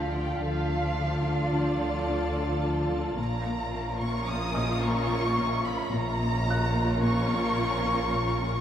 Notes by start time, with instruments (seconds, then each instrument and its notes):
Already playing: double bass section D2, cello section D3, viola section F3 F4, violin section F4 A4 F5 F6 B6, ambient pad D5 F5 A5, felt piano G6
0.14 cello section D3, violin section G5
0.41 double bass section D2, cello section D3, viola section F3 F4, violin section F4 A4 F5, ambient pad D5 F5 A5
0.70 cello section D4
0.98 cello section D3
1.15 violin section C7
1.25 cello section D3
1.52 cello section D3, violin section D5
1.80 cello section D3
2.08 cello section D4
2.35 cello section D3
2.62 cello section D3
2.90 cello section D3
3.17 double bass section A#1, cello section A#2, viola section F3 C#4, ambient pad F4 C#5 A#5, violin section F4 A#4 E5 A#5
3.45 cello section A#3
3.73 cello section A#2
4.00 cello section A#2, violin section C#6
4.28 cello section A#2, violin section D#6
4.54 cello section A#2, felt piano D#5 D#6
4.83 cello section A#3, violin section C#6
5.10 cello section A#2
5.38 cello section A#2
5.65 cello section A#2, violin section B5
5.91 double bass section A#1, cello section A#2, viola section F3 C#4, violin section F4 A#4 A#5, ambient pad F4 C#5 A#5
6.20 cello section A#3
6.48 cello section A#2, felt piano F#6
6.67 violin section D#5
6.76 cello section A#2
7.03 cello section A#2, violin section C#6
7.31 cello section A#2
7.59 cello section A#3
7.86 cello section A#2
8.13 cello section A#2
8.41 cello section A#2